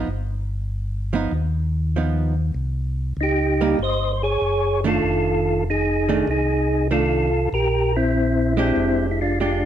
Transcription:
0.07 G1
1.13 F3 B3 D#4
1.31 D#2
1.96 F3 B3 D#4
2.54 C2
3.17 C#2 D#4
3.23 G4
3.61 G3 A#3 D#4
3.79 G1 C5
3.84 D#5
4.13 C5
4.23 G#4 C#5
4.42 F#1
4.84 D#3 A3 D4 F4 A4
5.03 F1
5.70 D#4 G#4
6.09 D#3 A3 D4
6.28 C2 D#4 G#4
6.91 D#3 A3 D4 F4 A4
7.53 A#1 G4 A#4
7.96 C4 E4
8.57 G#3 C4 D4 E4 G4
8.76 F1
9.11 E4
9.21 D4 F4
9.40 G#3 D4 F4 G4

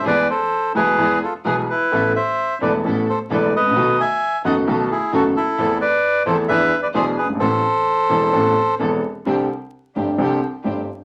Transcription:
0.00 D#2
0.05 E2 E3 G#3 B3 E4 G#4 B4 D5
0.30 A4 C5
0.75 B1 B2 E3 G#3 B3 E4 G#4 B4
0.98 E2 E3 G#3 B3 E4 G#4
1.23 F4 A4
1.45 B1 B2 E3 G#3 B3 E4 G#4 B4
1.70 E4 B4
1.91 A1 A2 E3 A3 B3 E4 A4
2.16 C5 E5
2.61 E1 E2 E3 A3 B3 E4 A4 B4 D5
2.84 A1 A2 E3 A3 B3 E4 A4
3.09 A4 C5
3.30 E1 E2 E3 A3 B3 E4 A4 B4 D5
3.56 G#1 B4 D#5
3.65 A1
3.71 A#1
3.75 B1 B2 D#3 A3 B3 D#4 F#4 A4
4.00 E5 G#5
4.44 F#1 F#2 D#3 A3 B3 D#4 F#4 A4 D#5 F#5
4.67 B1 B2 D#3 A3 B3 D#4 F#4 A4
4.91 E4 G#4
5.12 F#1 F#2 D#3 A3 B3 D#4 F#4 A4
5.36 E4 A4
5.57 E2 E3 A3 C4 E4 A4
5.81 B4 D5
6.25 E2 E3 A3 C4 E4 A4 C5
6.48 E2 E3 B3 D4 E4 G#4 B4 E5
6.83 B4 D5
6.94 B1 B2 E3 B3 D4 E4 G#4 C5
7.18 G#4 B4
7.24 F#1
7.29 G1
7.35 G#1
7.40 A1 A2 E3 B3 C4 A4 C5
8.08 E1 E2 E3 B3 C4 A4
8.32 A1 A2 E3 B3 C4 A4
8.78 E1 E2 E3 B3 C4 A4
9.26 C2 C3 D3 G3 C4 D4 G4
9.95 G1 G2 D3 G3 C4 D4 G4
10.18 C2 C3 D3 G3 C4 D4 G4
10.64 G1 G2 D3 G3 C4 D4 G4

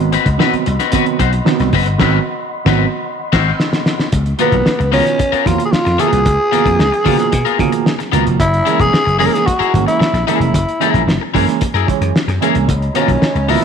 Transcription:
Already playing: G#1 D#5 F#5 B5 C6
0.00 closed hi-hat
0.13 C4 F#4 B4, closed hi-hat
0.26 C#2, kick, closed hi-hat
0.37 C3 D#3 F#3 B3 C4 F#4 B4, snare
0.54 muted slap bass stroke, closed hi-hat
0.66 C2, muted clean electric guitar stroke, closed hi-hat
0.79 C4 F#4 B4, snare, closed hi-hat
0.91 C3 D#3 F#3 B3 C4 F#4 B4, kick, closed hi-hat
1.06 muted clean electric guitar stroke, closed hi-hat
1.19 B1 C4 F#4 C5, kick, closed hi-hat
1.33 muted clean electric guitar stroke, closed hi-hat
1.44 C3 D#3 F#3 B3, muted clean electric guitar stroke, snare
1.60 C2, muted clean electric guitar stroke, snare, closed hi-hat
1.73 F#1 C4 F#4 B4, kick, open hi-hat
1.86 G1, muted clean electric guitar stroke, closed hi-hat
1.98 G#1 C3 D#3 F#3 B3 C4 F#4 B4, kick, snare, crash
2.65 G#1 C3 D#3 F#3 B3 C4 F#4 B4, kick, snare
3.32 G#1 C4 F#4 C5, kick, snare, crash
3.60 snare
3.73 snare
3.86 snare
4.00 snare
4.12 C#2, kick, closed hi-hat
4.26 closed hi-hat
4.38 B2 D#3 F3 A#3 B3 F4 A#4, closed hi-hat
4.52 B1, kick, closed hi-hat
4.66 muted clean electric guitar stroke, snare
4.79 C#2, muted clean electric guitar stroke, closed hi-hat
4.91 B2 D#3 F3 B3 C#4 F4 A#4, open hi-hat
5.06 muted clean electric guitar stroke, snare, closed hi-hat
5.18 muted clean electric guitar stroke, kick, closed hi-hat
5.32 B3 F4 A#4, muted slap bass stroke, closed hi-hat
5.45 E2 B2 D#3 F3 A#3 F4, kick, closed hi-hat
5.58 muted clean electric guitar stroke, closed hi-hat
5.65 G#4
5.72 F4, muted slap bass stroke, snare
5.85 F2, muted clean electric guitar stroke, snare, closed hi-hat
5.97 B2 D#3 F3 A#3 B3 F4 G#4 A#4, closed hi-hat
6.12 C2, muted clean electric guitar stroke, closed hi-hat
6.26 C#2, kick, closed hi-hat
6.51 B2 D#3 F3 A#3 B3 F4 A#4, closed hi-hat
6.66 F2, kick, closed hi-hat
6.79 C#2, muted clean electric guitar stroke, snare
6.92 muted clean electric guitar stroke, closed hi-hat
7.05 B2 C#3 D#3 F3 A#3 B3 F4 A#4, kick, open hi-hat
7.18 muted clean electric guitar stroke, snare, closed hi-hat
7.32 B2, muted clean electric guitar stroke, kick, closed hi-hat
7.45 B3 F4 A#4, closed hi-hat
7.58 B2 C#3 D#3 F3 A#3, muted clean electric guitar stroke, kick, closed hi-hat
7.72 muted clean electric guitar stroke, closed hi-hat
7.86 snare
7.99 muted clean electric guitar stroke, snare, closed hi-hat
8.12 C#2 B2 D#3 F3 A#3 B3 F4 A#4, closed hi-hat
8.26 F1, muted clean electric guitar stroke, closed hi-hat
8.40 F#1 E4, kick, closed hi-hat
8.54 closed hi-hat
8.65 C#3 E3 G#3 A#3 E4 G#4 A#4, closed hi-hat
8.80 E1 G#4, kick, closed hi-hat
8.93 muted clean electric guitar stroke, muted slap bass stroke, snare
9.05 F#1, muted clean electric guitar stroke, closed hi-hat
9.19 C#3 E3 G#3 A#3 E4 G#4 A#4, open hi-hat
9.27 A#4
9.32 G#4, muted clean electric guitar stroke, snare, closed hi-hat
9.46 F#4, muted clean electric guitar stroke, kick, closed hi-hat
9.59 E4 G#4 A#4, muted slap bass stroke, closed hi-hat
9.73 G#1 C#3 E3 G#3 A#3, muted clean electric guitar stroke, kick, closed hi-hat
9.87 E4, muted clean electric guitar stroke, closed hi-hat
10.00 muted clean electric guitar stroke, muted slap bass stroke, snare
10.13 A#1, muted clean electric guitar stroke, snare, closed hi-hat
10.26 C#3 E3 G#3 A#3 E4 G#4 A#4, closed hi-hat
10.40 F1, muted clean electric guitar stroke, closed hi-hat
10.54 F#1, kick, closed hi-hat
10.69 closed hi-hat
10.79 C#3 E3 G#3 A#3 E4 G#4 A#4, closed hi-hat
10.94 A#1, kick, closed hi-hat
11.07 F#1, muted clean electric guitar stroke, snare
11.21 muted clean electric guitar stroke
11.34 F#2 C#3 E3 G#3 A#3 E4 G#4 A#4, kick, open hi-hat
11.48 muted clean electric guitar stroke, snare, closed hi-hat
11.61 muted clean electric guitar stroke, kick, closed hi-hat
11.74 F#2 E4 G#4 A#4, closed hi-hat
11.86 C#3 E3 G#3 C#4, muted clean electric guitar stroke, kick, closed hi-hat
12.01 F#2, muted clean electric guitar stroke, closed hi-hat
12.16 snare
12.28 F#2, muted clean electric guitar stroke, snare, closed hi-hat
12.40 C#3 E3 G#3 A#3 E4 G#4 A#4, closed hi-hat
12.55 C2, muted clean electric guitar stroke, closed hi-hat
12.67 C#2 C#5 D#5 A#5 B5, kick, closed hi-hat
12.82 closed hi-hat
12.93 B2 D#3 F3 A#3 B3 C#4 F4 A#4, closed hi-hat
13.08 B1, kick, closed hi-hat
13.22 muted slap bass stroke, muted clean electric guitar stroke, snare
13.35 C#2, muted clean electric guitar stroke, closed hi-hat
13.47 B2 D#3 F3 A#3 B3 E4 F4 A#4, open hi-hat
13.61 muted clean electric guitar stroke, snare

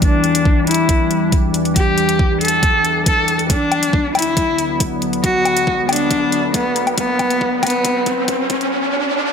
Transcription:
Already playing: E2 E3 G3 D4
0.02 D4, kick, closed hi-hat
0.24 closed hi-hat
0.35 closed hi-hat
0.45 kick
0.67 E4, closed hi-hat
0.71 closed hi-hat
0.74 closed hi-hat
0.89 kick, closed hi-hat
1.11 closed hi-hat
1.32 kick, closed hi-hat
1.54 closed hi-hat
1.65 closed hi-hat
1.76 G4, kick, closed hi-hat
1.98 closed hi-hat
2.09 closed hi-hat
2.19 kick
2.41 A4, closed hi-hat
2.45 closed hi-hat
2.48 closed hi-hat
2.63 kick, closed hi-hat
2.85 closed hi-hat
3.06 A4, kick, closed hi-hat
3.28 closed hi-hat
3.39 closed hi-hat
3.50 D2 D3 F#3 B3 D4, kick, closed hi-hat, riser
3.72 closed hi-hat, low woodblock
3.83 closed hi-hat
3.93 kick
4.15 E4, closed hi-hat, low woodblock
4.19 closed hi-hat
4.22 closed hi-hat
4.37 kick, closed hi-hat
4.58 closed hi-hat
4.80 kick, closed hi-hat
5.02 closed hi-hat
5.13 closed hi-hat
5.24 F#4, kick, closed hi-hat
5.45 closed hi-hat, low woodblock
5.57 closed hi-hat
5.67 kick
5.89 D4, closed hi-hat, low woodblock
5.93 closed hi-hat
5.96 closed hi-hat
6.11 kick, closed hi-hat
6.32 closed hi-hat
6.54 B3, kick, closed hi-hat
6.76 closed hi-hat
6.87 closed hi-hat, low woodblock
6.98 B3, kick, closed hi-hat
7.19 kick, closed hi-hat, low woodblock
7.30 closed hi-hat
7.41 kick
7.63 B3, kick, closed hi-hat, low woodblock
7.67 closed hi-hat
7.70 closed hi-hat
7.85 kick, closed hi-hat
8.06 kick, closed hi-hat
8.28 kick, closed hi-hat
8.50 kick, closed hi-hat
8.61 closed hi-hat

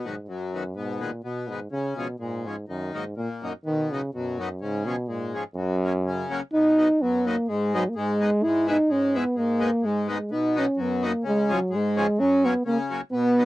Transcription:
Already playing: B2
0.05 G#2 D#3 F#3 B3
0.22 G#2
0.28 F#2
0.54 D#3 F#3 B3
0.75 G#2 B2
1.00 A#2 D#3 G#3 B3
1.24 B2
1.49 G#2 D#3 G#3 B3
1.71 C#3
1.96 B2 F3 G#3 C#4
2.20 G#2 A#2
2.46 G#2 F3 G#3 C#4
2.68 F#2 D#3
2.94 G#2 F#3 A#3 D#4
3.17 A#2
3.42 F#2 F#3 A#3 D#4
3.65 B2 D#3
3.91 C#3 F#3 B3 D#4
4.14 F#2 B2
4.39 F#2 F#3 B3 D#4
4.61 G#2 C#3
4.86 B2 F3 G#3 C#4
5.08 G#2 A#2
5.34 F3 G#3 C#4
5.55 F#2
5.83 F#3 A#3 C#4
6.06 C#3
6.30 F#3 A#3 C#4
6.53 B2 D#4
6.77 F#3 B3 D#4
7.01 F#2 B3
7.26 F#3 A#3 B3 D#4
7.48 G#2 G#3
7.74 F#3 G#3 B3 D#4
7.89 A#3
7.95 G#2 G#3
8.20 G#3 B3 D#4
8.43 G#2 E4
8.67 G#3 B3 D#4 E4
8.89 G#2 C#4
9.14 G#3 B3 E4
9.35 G#2 A#3
9.60 G#3 B3 D#4
9.82 G#2 G#3
10.08 G#3 B3 D#4
10.31 B2 D#4
10.55 F#3 B3 C#4 D#4
10.77 F#2
10.81 B3
11.02 F#3 A#3 B3 D#4
11.24 C#3 G#3
11.49 F3 G#3 C#4
11.53 F#3
11.70 G#2
11.75 G#3
11.96 F3 G#3 C#4
12.18 F#2 C#4
12.43 F#3 A#3 B3 C#4
12.65 C#3 A#3
12.90 F#3 A#3 C#4
13.12 B2 B3
13.38 F#3 B3 D#4

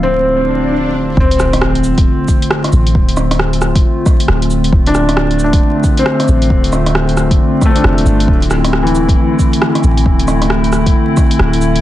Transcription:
Already playing: D1 D3 F3 A3 C4 E4 F4
0.03 C4
0.28 swell
1.17 D1 D3 A3 C4 F4, kick, sub drop
1.31 closed hi-hat
1.40 cross-stick, cabasa
1.53 cross-stick, closed hi-hat
1.61 cross-stick
1.75 closed hi-hat
1.84 cabasa
1.98 kick, closed hi-hat
2.28 kick, cabasa
2.42 closed hi-hat
2.51 cross-stick
2.64 cross-stick, closed hi-hat
2.73 A1, cabasa
2.87 closed hi-hat
2.95 D1, kick
3.09 closed hi-hat
3.17 cross-stick, cabasa
3.31 cross-stick, closed hi-hat
3.39 cross-stick
3.53 closed hi-hat
3.62 cross-stick, cabasa
3.75 kick, closed hi-hat
4.06 kick, cross-stick, cabasa
4.20 closed hi-hat
4.28 D1, cross-stick
4.42 closed hi-hat
4.51 cabasa
4.64 closed hi-hat
4.73 D1, kick
4.87 D4, closed hi-hat
4.95 cross-stick, cabasa
5.09 cross-stick, closed hi-hat
5.17 cross-stick
5.31 closed hi-hat
5.39 cabasa
5.44 D4
5.53 kick, closed hi-hat
5.84 kick, cabasa
5.97 C4, closed hi-hat
6.06 cross-stick
6.20 cross-stick, closed hi-hat
6.28 A1, cabasa
6.42 closed hi-hat
6.50 D1, kick
6.64 closed hi-hat
6.73 cross-stick, cabasa
6.86 cross-stick, closed hi-hat
6.95 cross-stick
7.09 closed hi-hat
7.17 cross-stick, cabasa
7.31 kick, closed hi-hat
7.61 kick, cross-stick, cabasa
7.65 A3
7.70 C4
7.76 D4, closed hi-hat
7.84 F1, cross-stick
7.97 D1, closed hi-hat
8.06 G1, cabasa
8.20 closed hi-hat
8.28 D1 A3 E4, kick
8.42 closed hi-hat
8.51 cross-stick, cabasa
8.64 cross-stick, closed hi-hat
8.73 cross-stick
8.83 E3, closed hi-hat
8.95 cabasa
9.09 kick, closed hi-hat
9.39 kick, cabasa
9.53 closed hi-hat
9.62 cross-stick
9.75 cross-stick, closed hi-hat
9.84 A1, cabasa
9.97 closed hi-hat
10.06 D1, kick
10.20 closed hi-hat
10.28 cross-stick, cabasa
10.42 cross-stick, closed hi-hat
10.50 cross-stick
10.64 closed hi-hat
10.73 cross-stick, cabasa
10.86 kick, closed hi-hat
11.17 kick, cross-stick, cabasa
11.31 closed hi-hat
11.39 D1, cross-stick
11.53 closed hi-hat
11.61 cabasa
11.76 closed hi-hat

